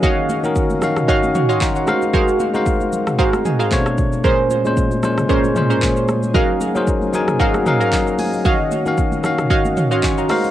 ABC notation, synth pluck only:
X:1
M:4/4
L:1/16
Q:"Swing 16ths" 1/4=114
K:Ebdor
V:1 name="Synth pluck"
[Gdef]4 z4 [Gdef] z2 [Gdef] z4 | [GABcf]4 z4 [GABcf] z2 [GABcf] z4 | [DABc]4 z4 [DABc] z2 [DABc] z4 | [GABef]4 z4 [GABef] z2 [GABef] z4 |
[Gdef]4 z4 [Gdef] z2 [Gdef] z4 |]